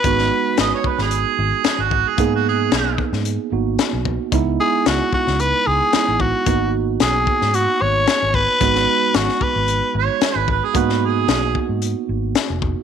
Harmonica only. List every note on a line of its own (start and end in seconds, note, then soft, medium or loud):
0.61 0.73 D#5 medium
0.74 0.89 C#5 medium
0.87 0.99 B4 medium
1.02 1.83 G#4 medium
1.82 2.10 F#4 medium
2.08 2.33 G#4 medium
2.35 2.46 F#4 medium
2.48 2.99 G#4 medium
9.98 10.37 C#5 loud
10.37 10.49 B4 loud
10.51 10.66 B4 medium
10.65 10.79 G#4 medium
10.77 11.07 B4 medium
11.05 11.56 G#4 medium